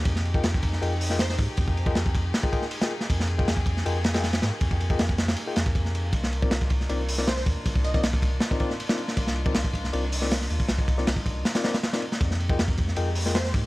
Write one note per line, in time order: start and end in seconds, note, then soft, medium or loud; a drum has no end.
0.00 6.09 D#4 medium
0.00 6.09 G4 medium
0.05 0.42 F2 loud
0.05 12.17 A#3 medium
0.05 6.09 G#4 loud
0.05 kick loud
0.05 ride medium
0.16 snare medium
0.25 ride medium
0.34 0.46 F4 medium
0.34 0.46 G#4 medium
0.34 0.46 A#4 medium
0.34 0.46 D#5 medium
0.34 0.46 G5 medium
0.34 kick loud
0.43 0.80 F2 medium
0.43 snare loud
0.43 ride medium
0.54 kick loud
0.63 kick medium
0.63 ride medium
0.73 snare soft
0.82 1.37 F2 medium
0.82 0.93 F4 medium
0.82 0.93 G#4 medium
0.82 0.93 A#4 medium
0.82 0.93 D#5 medium
0.82 0.93 G5 loud
0.82 ride medium
1.01 open hi-hat medium
1.10 1.22 F4 medium
1.10 1.22 G#4 medium
1.10 1.22 A#4 medium
1.10 1.22 D#5 medium
1.10 1.22 G5 loud
1.10 snare soft
1.19 1.26 C5 medium
1.19 snare loud
1.19 ride medium
1.30 1.36 C5 medium
1.30 snare soft
1.38 1.48 G#2 loud
1.38 kick medium
1.38 ride medium
1.57 1.94 F2 loud
1.57 kick loud
1.57 ride medium
1.68 kick medium
1.77 ride medium
1.86 1.98 F4 medium
1.86 1.98 G#4 medium
1.86 1.97 A#4 medium
1.86 1.98 D#5 medium
1.86 1.98 G5 loud
1.86 kick loud
1.95 2.32 F2 medium
1.95 snare loud
1.95 ride loud
2.06 kick medium
2.15 kick loud
2.15 ride medium
2.34 snare loud
2.34 ride medium
2.43 2.51 F4 medium
2.43 2.51 G#4 medium
2.43 2.51 A#4 medium
2.43 2.51 D#5 medium
2.43 2.51 G5 medium
2.43 kick medium
2.52 2.64 F4 medium
2.52 2.64 G#4 medium
2.52 2.64 A#4 medium
2.52 2.64 D#5 medium
2.52 2.64 G5 medium
2.52 kick medium
2.52 ride medium
2.62 snare soft
2.71 ride loud
2.81 2.92 F4 medium
2.81 2.92 G#4 medium
2.81 2.92 A#4 medium
2.81 2.92 D#5 medium
2.81 2.92 G5 medium
2.81 snare loud
2.91 ride medium
3.01 snare medium
3.10 3.46 F2 loud
3.10 kick loud
3.10 ride loud
3.20 snare medium
3.27 ride medium
3.38 3.49 F4 medium
3.38 3.49 G#4 medium
3.38 3.49 A#4 medium
3.38 3.49 D#5 medium
3.38 3.49 G5 medium
3.38 kick loud
3.48 3.84 F2 medium
3.48 snare loud
3.48 ride medium
3.57 kick medium
3.66 kick medium
3.66 ride medium
3.77 snare soft
3.85 4.41 F2 medium
3.85 3.97 F4 medium
3.85 3.97 G#4 medium
3.85 3.97 A#4 medium
3.85 3.97 D#5 medium
3.85 3.97 G5 loud
3.85 ride medium
4.04 snare loud
4.04 ride medium
4.14 4.25 F4 medium
4.14 4.25 G#4 medium
4.14 4.25 A#4 medium
4.14 4.25 D#5 medium
4.14 4.25 G5 loud
4.14 snare loud
4.14 ride medium
4.23 snare loud
4.23 ride medium
4.33 snare loud
4.33 ride medium
4.42 4.51 G#2 loud
4.42 snare loud
4.42 ride medium
4.61 4.98 F2 loud
4.61 kick loud
4.61 ride medium
4.71 kick loud
4.80 ride medium
4.90 5.01 F4 medium
4.90 5.01 G#4 medium
4.90 5.01 A#4 medium
4.90 5.01 D#5 medium
4.90 5.01 G5 loud
4.90 kick medium
4.99 5.36 F2 medium
4.99 snare loud
4.99 ride medium
5.09 kick loud
5.18 snare loud
5.18 ride medium
5.28 snare loud
5.28 ride medium
5.36 ride loud
5.47 5.55 F4 medium
5.47 5.55 G#4 medium
5.47 5.55 A#4 medium
5.47 5.55 D#5 medium
5.47 5.55 G5 medium
5.56 6.12 F2 medium
5.56 snare loud
5.56 ride medium
5.66 kick medium
5.75 kick medium
5.75 ride medium
5.85 snare soft
5.95 ride medium
6.13 6.50 C2 loud
6.13 12.17 D4 medium
6.13 13.66 D#4 medium
6.13 12.17 F4 medium
6.13 kick loud
6.13 ride medium
6.23 snare medium
6.33 ride medium
6.42 6.53 C4 medium
6.42 6.53 D#4 medium
6.42 6.53 F4 medium
6.42 6.53 A#4 medium
6.42 6.53 D5 medium
6.42 kick loud
6.51 6.88 C2 medium
6.51 snare loud
6.51 ride medium
6.61 kick medium
6.70 kick loud
6.70 ride medium
6.81 snare soft
6.89 7.45 C2 medium
6.89 7.01 C4 medium
6.89 7.01 D#4 medium
6.89 7.01 F4 medium
6.89 7.01 A#4 medium
6.89 7.01 D5 loud
6.89 ride medium
7.09 open hi-hat medium
7.18 7.29 C4 medium
7.18 7.29 D#4 medium
7.18 7.29 F4 medium
7.18 7.29 A#4 medium
7.18 7.29 D5 loud
7.18 snare soft
7.27 7.34 C5 medium
7.27 snare loud
7.27 ride medium
7.37 7.43 C5 medium
7.37 snare soft
7.46 7.55 D#2 loud
7.46 kick loud
7.46 ride medium
7.66 8.02 C2 loud
7.66 kick loud
7.66 ride medium
7.75 kick loud
7.84 7.91 D#5 medium
7.84 ride medium
7.94 8.05 C4 medium
7.94 8.05 D#4 medium
7.94 8.05 F4 medium
7.94 8.05 A#4 medium
7.94 8.05 D5 loud
7.94 8.00 D#5 medium
7.94 kick loud
8.03 8.40 C2 medium
8.03 snare loud
8.03 ride loud
8.13 kick loud
8.22 kick loud
8.22 ride medium
8.40 snare loud
8.40 ride medium
8.51 8.58 C4 medium
8.51 8.58 D#4 medium
8.51 8.58 F4 medium
8.51 8.58 A#4 medium
8.51 8.58 D5 medium
8.51 kick medium
8.60 8.72 C4 medium
8.60 8.72 D#4 medium
8.60 8.72 F4 medium
8.60 8.72 A#4 medium
8.60 8.72 D5 medium
8.60 kick medium
8.60 ride medium
8.70 snare soft
8.80 ride medium
8.89 9.00 C4 medium
8.89 9.00 D#4 medium
8.89 9.00 F4 medium
8.89 9.00 A#4 medium
8.89 9.00 D5 medium
8.89 snare loud
8.98 ride medium
9.08 snare medium
9.17 9.54 C2 loud
9.17 kick loud
9.17 ride medium
9.27 snare medium
9.36 ride medium
9.46 9.57 C4 medium
9.46 9.57 D#4 medium
9.46 9.57 F4 medium
9.46 9.57 A#4 medium
9.46 9.57 D5 medium
9.46 kick loud
9.55 9.92 C2 medium
9.55 snare loud
9.55 ride loud
9.64 kick loud
9.73 kick medium
9.73 ride medium
9.84 snare soft
9.93 10.49 C2 medium
9.93 10.05 C4 medium
9.93 10.05 D#4 medium
9.93 10.05 F4 medium
9.93 10.05 A#4 medium
9.93 10.05 D5 loud
9.93 ride medium
10.12 open hi-hat medium
10.21 10.33 C4 medium
10.21 10.33 D#4 medium
10.21 10.33 F4 medium
10.21 10.33 A#4 medium
10.21 10.33 D5 loud
10.21 snare soft
10.31 snare loud
10.31 ride medium
10.41 snare medium
10.50 10.59 D#2 loud
10.50 ride medium
10.60 kick medium
10.69 11.06 C2 loud
10.69 snare loud
10.69 ride medium
10.78 kick medium
10.88 kick medium
10.88 ride medium
10.98 11.09 C4 medium
10.98 11.09 D#4 medium
10.98 11.09 F4 medium
10.98 11.09 A#4 medium
10.98 11.09 D5 loud
10.98 snare soft
11.07 11.44 C2 medium
11.07 snare loud
11.07 ride loud
11.16 kick medium
11.26 kick medium
11.26 ride medium
11.45 snare loud
11.45 ride medium
11.55 11.62 C4 medium
11.55 11.62 D#4 medium
11.55 11.62 F4 medium
11.55 11.62 A#4 medium
11.55 11.62 D5 medium
11.55 snare loud
11.55 ride medium
11.64 11.76 C4 medium
11.64 11.76 D#4 medium
11.64 11.76 F4 medium
11.64 11.76 A#4 medium
11.64 11.76 D5 medium
11.64 snare loud
11.64 ride medium
11.74 snare loud
11.74 ride medium
11.83 snare loud
11.83 ride medium
11.93 12.04 C4 medium
11.93 12.04 D#4 medium
11.93 12.04 F4 medium
11.93 12.04 A#4 medium
11.93 12.04 D5 medium
11.93 snare loud
11.93 ride medium
12.02 ride medium
12.12 snare medium
12.21 12.57 F2 loud
12.21 13.66 G#3 medium
12.21 13.66 A#3 medium
12.21 13.66 G4 medium
12.21 kick loud
12.21 ride medium
12.31 snare medium
12.40 ride medium
12.49 12.61 F4 medium
12.49 12.61 G#4 medium
12.49 12.61 A#4 medium
12.49 12.61 D#5 medium
12.49 12.61 G5 medium
12.49 kick loud
12.59 12.96 F2 medium
12.59 snare loud
12.59 ride loud
12.68 kick loud
12.77 kick loud
12.77 ride medium
12.88 snare soft
12.96 13.53 F2 medium
12.96 13.08 F4 medium
12.96 13.08 G#4 medium
12.96 13.09 A#4 medium
12.96 13.08 D#5 medium
12.96 13.08 G5 medium
12.96 ride medium
13.15 open hi-hat medium
13.26 13.37 F4 medium
13.26 13.37 G#4 medium
13.26 13.37 A#4 medium
13.26 13.37 D#5 medium
13.26 13.37 G5 medium
13.26 snare soft
13.35 13.41 C5 medium
13.35 snare loud
13.35 ride medium
13.45 13.50 C5 medium
13.45 snare soft
13.54 13.63 G#2 loud
13.54 kick loud
13.54 ride medium